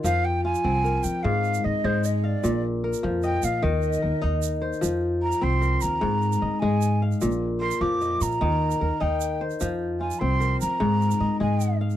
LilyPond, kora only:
<<
  \new Staff \with { instrumentName = "Kora" } { \time 12/8 \key f \minor \tempo 4. = 100 f'8 r8 f'4 bes'4. r8 ees''8 aes'4 f''8~ | f''8 r8 bes'4 ees''4. r8 bes'8 ees'4 c''8~ | c''8 r4. bes'4. r8 ees''8 aes'4 f''8~ | f''8 r8 bes'4 ees''4. r8 bes'8 ees'4 c''8~ |
c''8 r8 f'4 bes'4. r8 ees''8 aes'4 f''8 | }
  \new Staff \with { instrumentName = "Kora" } { \clef bass \time 12/8 \key f \minor f4 r8 c'4 r8 aes,4 r8 aes4 r8 | bes,4 r8 f4 r8 ees4 r8 ees'4 r8 | f4 r8 c'4 r8 aes,4 r8 aes4 r8 | bes,4 r8 f4 r8 ees4 r8 ees'4 r8 |
f4 r8 c'4 r8 aes,4 r8 aes4 r8 | }
>>